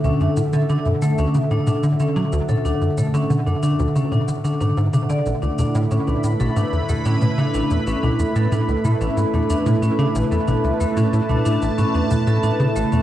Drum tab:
SH |xxxxxxxxxxxxxxxx|xxxxxxxxxxxxxxxx|xxxxxxxxxxxxxxxx|xxxxxxxxxxxxxxxx|
T1 |o--o-o--o-o--o-o|--o-o--o-o--o-o-|o-o--o-o--o-o--o|-o--o-o--o-o--o-|

SH |xxxxxxxxxxxxxxxx|
T1 |o--o-o--o-o--o-o|